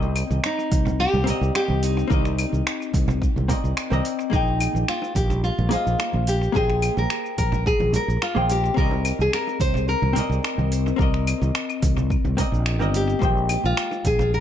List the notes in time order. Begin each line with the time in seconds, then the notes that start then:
Already playing: C2 C4 A#4 D5 D#5
0.03 high bongo
0.16 open hi-hat, claves, shaker
0.30 C2, high conga, shaker
0.44 D#4, finger snap, shaker
0.59 high bongo, shaker
0.72 C2, kick, open hi-hat, high conga, shaker
0.87 low conga, shaker
0.99 G4, high bongo, shaker
1.14 C2, high conga, low conga
1.24 C4 A#4, open hi-hat, low conga
1.28 D5 D#5, shaker
1.41 C2, shaker
1.55 G4, finger snap, high bongo, shaker
1.68 C2, high conga
1.83 D#4, open hi-hat, shaker
1.97 high bongo, shaker
2.07 C2 C4 A#4 D5, kick, high conga, shaker
2.13 D#5
2.25 finger snap, shaker
2.38 open hi-hat, claves, shaker
2.52 C2, high bongo, high conga, shaker
2.67 finger snap, shaker
2.82 shaker
2.94 C2, kick, open hi-hat, high bongo, high conga, shaker
3.08 low conga, shaker
3.22 kick, shaker
3.36 C2, high conga, low conga
3.48 C4 A#4 D5 D#5, kick, open hi-hat, high bongo, low conga, shaker
3.64 C2, shaker
3.77 finger snap, shaker
3.90 C2 C4 A#4 D5 D#5, high bongo, high conga, shaker
4.05 open hi-hat, shaker
4.20 shaker
4.30 A#1 A#3 D#4 G#4, kick, high conga, shaker
4.34 D#5 G5
4.59 open hi-hat, high bongo, claves, shaker
4.74 A#1, high conga, shaker
4.88 F4, finger snap, shaker
5.02 high bongo, shaker
5.15 A#1 G4, kick, open hi-hat, high conga, shaker
5.30 low conga, shaker
5.44 F4, shaker
5.58 A#1, high bongo, high conga, low conga
5.69 A#3 F4 G#4 C5, open hi-hat, low conga, shaker
5.73 D#5 F5
5.87 A#1, shaker
5.99 finger snap, high bongo, shaker
6.13 A#1, high conga
6.27 G4, open hi-hat, shaker
6.43 shaker
6.52 A#1 A#3 G#4 C5, kick, high bongo, high conga, shaker
6.57 D#5 G5
6.70 finger snap
6.82 open hi-hat, claves, shaker
6.97 A#1 A#4, high bongo, high conga, shaker
7.10 finger snap, shaker
7.26 shaker
7.38 A#1 A#4, kick, open hi-hat, high conga, shaker
7.52 high bongo, low conga, shaker
7.66 G#4, kick, shaker
7.80 A#1, high conga, low conga
7.93 A#4, open hi-hat, high bongo, low conga, shaker
8.08 A#1, shaker
8.22 F4, finger snap, shaker
8.35 A#1 A#3 G#4 C5 D#5 G5, high conga
8.50 G4, open hi-hat, high bongo, shaker
8.65 shaker
8.74 C2 C4 A#4, kick, shaker
8.78 D5 D#5, high conga
8.91 high bongo
9.05 open hi-hat, claves, shaker
9.19 C2 G#4, high conga, shaker
9.33 A#4, finger snap, shaker
9.47 high bongo, shaker
9.60 C2 C5, kick, open hi-hat, high conga, shaker
9.74 low conga, shaker
9.88 A#4, high bongo, shaker
10.02 C2, high conga, low conga
10.13 C4 A#4 D5, open hi-hat, low conga, shaker
10.19 D#5
10.30 C2, shaker
10.43 finger snap, high bongo, shaker
10.58 C2, high conga
10.72 open hi-hat, shaker
10.87 high bongo, shaker
10.96 C2 C4 A#4, kick, high conga
11.00 D5 D#5, shaker
11.14 finger snap
11.27 open hi-hat, claves, shaker
11.41 C2, high bongo, high conga, shaker
11.55 finger snap, shaker
11.70 claves, shaker
11.82 C2, kick, open hi-hat, high bongo, high conga, shaker
11.98 low conga, shaker
12.10 kick, shaker
12.25 C2, high conga, low conga
12.37 C4 A#4 D5 D#5, kick, open hi-hat, high bongo, low conga, shaker
12.52 A#1, shaker
12.66 finger snap, shaker
12.79 G1 C4 A#4 D5 D#5, high bongo, high conga, shaker
12.94 G4, open hi-hat, shaker
13.10 shaker
13.19 A#1 G#3 A#3 C5, kick, high conga, shaker
13.23 D#5 G5
13.49 open hi-hat, high bongo, claves, shaker
13.64 A#1 F4, high conga, shaker
13.77 finger snap, shaker
13.91 high bongo, shaker
14.04 A#1 G#4, kick, open hi-hat, high conga, shaker
14.19 low conga, shaker
14.34 A#4, shaker